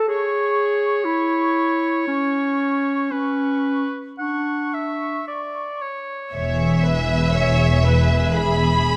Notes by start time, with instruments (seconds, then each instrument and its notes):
0.08 clarinet G#4, oboe C#5, flute section C#6
1.04 clarinet E4, flute section C#6
2.07 clarinet C#4, flute section C#6
3.12 clarinet C#4, oboe B4, flute section C#6
4.19 clarinet D4, oboe F#5, flute section C#6
4.74 oboe E5
5.28 oboe D5
5.81 oboe C#5
6.33 double bass section E1, cello section E2, violin section G#4 E5, viola section C#5
6.83 viola section B4
7.33 viola section C#5
7.85 viola section B4
8.37 viola section G#4, violin section B5